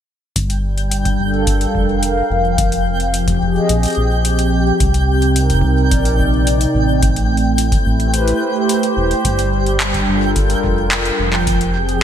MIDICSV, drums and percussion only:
0, 0, Header, 1, 2, 480
1, 0, Start_track
1, 0, Key_signature, -2, "minor"
1, 0, Tempo, 555556
1, 310, Time_signature, 4, 2, 24, 8
1, 10395, End_track
2, 0, Start_track
2, 0, Title_t, "Drums"
2, 311, Note_on_c, 9, 36, 111
2, 311, Note_on_c, 9, 42, 77
2, 397, Note_off_c, 9, 36, 0
2, 397, Note_off_c, 9, 42, 0
2, 431, Note_on_c, 9, 42, 51
2, 517, Note_off_c, 9, 42, 0
2, 670, Note_on_c, 9, 42, 35
2, 757, Note_off_c, 9, 42, 0
2, 790, Note_on_c, 9, 42, 76
2, 877, Note_off_c, 9, 42, 0
2, 911, Note_on_c, 9, 36, 100
2, 911, Note_on_c, 9, 42, 51
2, 997, Note_off_c, 9, 36, 0
2, 997, Note_off_c, 9, 42, 0
2, 1270, Note_on_c, 9, 42, 76
2, 1271, Note_on_c, 9, 36, 94
2, 1357, Note_off_c, 9, 36, 0
2, 1357, Note_off_c, 9, 42, 0
2, 1391, Note_on_c, 9, 42, 50
2, 1477, Note_off_c, 9, 42, 0
2, 1511, Note_on_c, 9, 36, 77
2, 1597, Note_off_c, 9, 36, 0
2, 1751, Note_on_c, 9, 42, 73
2, 1837, Note_off_c, 9, 42, 0
2, 2231, Note_on_c, 9, 36, 114
2, 2231, Note_on_c, 9, 42, 76
2, 2317, Note_off_c, 9, 36, 0
2, 2317, Note_off_c, 9, 42, 0
2, 2351, Note_on_c, 9, 42, 53
2, 2438, Note_off_c, 9, 42, 0
2, 2591, Note_on_c, 9, 42, 38
2, 2678, Note_off_c, 9, 42, 0
2, 2711, Note_on_c, 9, 42, 75
2, 2797, Note_off_c, 9, 42, 0
2, 2831, Note_on_c, 9, 36, 94
2, 2831, Note_on_c, 9, 42, 51
2, 2851, Note_off_c, 9, 36, 0
2, 2851, Note_on_c, 9, 36, 79
2, 2871, Note_off_c, 9, 36, 0
2, 2871, Note_on_c, 9, 36, 64
2, 2891, Note_off_c, 9, 36, 0
2, 2891, Note_on_c, 9, 36, 53
2, 2917, Note_off_c, 9, 42, 0
2, 2978, Note_off_c, 9, 36, 0
2, 3191, Note_on_c, 9, 42, 80
2, 3277, Note_off_c, 9, 42, 0
2, 3311, Note_on_c, 9, 42, 50
2, 3330, Note_off_c, 9, 42, 0
2, 3330, Note_on_c, 9, 42, 41
2, 3351, Note_off_c, 9, 42, 0
2, 3351, Note_on_c, 9, 42, 33
2, 3371, Note_off_c, 9, 42, 0
2, 3371, Note_on_c, 9, 42, 27
2, 3392, Note_off_c, 9, 42, 0
2, 3392, Note_on_c, 9, 42, 22
2, 3412, Note_off_c, 9, 42, 0
2, 3412, Note_on_c, 9, 42, 18
2, 3498, Note_off_c, 9, 42, 0
2, 3670, Note_on_c, 9, 42, 76
2, 3757, Note_off_c, 9, 42, 0
2, 3790, Note_on_c, 9, 42, 51
2, 3877, Note_off_c, 9, 42, 0
2, 4150, Note_on_c, 9, 42, 74
2, 4151, Note_on_c, 9, 36, 119
2, 4236, Note_off_c, 9, 42, 0
2, 4237, Note_off_c, 9, 36, 0
2, 4270, Note_on_c, 9, 42, 53
2, 4357, Note_off_c, 9, 42, 0
2, 4511, Note_on_c, 9, 42, 35
2, 4597, Note_off_c, 9, 42, 0
2, 4630, Note_on_c, 9, 42, 76
2, 4716, Note_off_c, 9, 42, 0
2, 4750, Note_on_c, 9, 42, 49
2, 4751, Note_on_c, 9, 36, 46
2, 4771, Note_off_c, 9, 36, 0
2, 4771, Note_on_c, 9, 36, 56
2, 4791, Note_off_c, 9, 36, 0
2, 4791, Note_on_c, 9, 36, 62
2, 4811, Note_off_c, 9, 36, 0
2, 4811, Note_on_c, 9, 36, 70
2, 4831, Note_off_c, 9, 36, 0
2, 4831, Note_on_c, 9, 36, 79
2, 4836, Note_off_c, 9, 42, 0
2, 4851, Note_off_c, 9, 36, 0
2, 4851, Note_on_c, 9, 36, 90
2, 4937, Note_off_c, 9, 36, 0
2, 5110, Note_on_c, 9, 42, 77
2, 5111, Note_on_c, 9, 36, 98
2, 5196, Note_off_c, 9, 42, 0
2, 5198, Note_off_c, 9, 36, 0
2, 5230, Note_on_c, 9, 42, 51
2, 5317, Note_off_c, 9, 42, 0
2, 5351, Note_on_c, 9, 36, 82
2, 5437, Note_off_c, 9, 36, 0
2, 5589, Note_on_c, 9, 42, 72
2, 5676, Note_off_c, 9, 42, 0
2, 5709, Note_on_c, 9, 42, 52
2, 5795, Note_off_c, 9, 42, 0
2, 6069, Note_on_c, 9, 42, 71
2, 6071, Note_on_c, 9, 36, 114
2, 6156, Note_off_c, 9, 42, 0
2, 6157, Note_off_c, 9, 36, 0
2, 6190, Note_on_c, 9, 42, 49
2, 6276, Note_off_c, 9, 42, 0
2, 6371, Note_on_c, 9, 42, 34
2, 6457, Note_off_c, 9, 42, 0
2, 6550, Note_on_c, 9, 42, 72
2, 6637, Note_off_c, 9, 42, 0
2, 6671, Note_on_c, 9, 36, 100
2, 6671, Note_on_c, 9, 42, 49
2, 6757, Note_off_c, 9, 36, 0
2, 6757, Note_off_c, 9, 42, 0
2, 6910, Note_on_c, 9, 42, 34
2, 6996, Note_off_c, 9, 42, 0
2, 7030, Note_on_c, 9, 42, 74
2, 7116, Note_off_c, 9, 42, 0
2, 7150, Note_on_c, 9, 42, 49
2, 7237, Note_off_c, 9, 42, 0
2, 7511, Note_on_c, 9, 42, 71
2, 7597, Note_off_c, 9, 42, 0
2, 7631, Note_on_c, 9, 42, 49
2, 7717, Note_off_c, 9, 42, 0
2, 7871, Note_on_c, 9, 42, 35
2, 7957, Note_off_c, 9, 42, 0
2, 7991, Note_on_c, 9, 36, 116
2, 7991, Note_on_c, 9, 42, 71
2, 8077, Note_off_c, 9, 42, 0
2, 8078, Note_off_c, 9, 36, 0
2, 8111, Note_on_c, 9, 42, 48
2, 8197, Note_off_c, 9, 42, 0
2, 8350, Note_on_c, 9, 42, 33
2, 8437, Note_off_c, 9, 42, 0
2, 8470, Note_on_c, 9, 39, 112
2, 8470, Note_on_c, 9, 42, 72
2, 8557, Note_off_c, 9, 39, 0
2, 8557, Note_off_c, 9, 42, 0
2, 8591, Note_on_c, 9, 36, 99
2, 8591, Note_on_c, 9, 42, 47
2, 8677, Note_off_c, 9, 42, 0
2, 8678, Note_off_c, 9, 36, 0
2, 8950, Note_on_c, 9, 42, 70
2, 8952, Note_on_c, 9, 36, 96
2, 9036, Note_off_c, 9, 42, 0
2, 9038, Note_off_c, 9, 36, 0
2, 9070, Note_on_c, 9, 42, 48
2, 9157, Note_off_c, 9, 42, 0
2, 9192, Note_on_c, 9, 36, 77
2, 9278, Note_off_c, 9, 36, 0
2, 9430, Note_on_c, 9, 39, 111
2, 9430, Note_on_c, 9, 42, 67
2, 9517, Note_off_c, 9, 39, 0
2, 9517, Note_off_c, 9, 42, 0
2, 9550, Note_on_c, 9, 42, 48
2, 9637, Note_off_c, 9, 42, 0
2, 9790, Note_on_c, 9, 39, 60
2, 9876, Note_off_c, 9, 39, 0
2, 9910, Note_on_c, 9, 42, 68
2, 9911, Note_on_c, 9, 36, 109
2, 9997, Note_off_c, 9, 42, 0
2, 9998, Note_off_c, 9, 36, 0
2, 10030, Note_on_c, 9, 42, 47
2, 10117, Note_off_c, 9, 42, 0
2, 10270, Note_on_c, 9, 42, 33
2, 10357, Note_off_c, 9, 42, 0
2, 10395, End_track
0, 0, End_of_file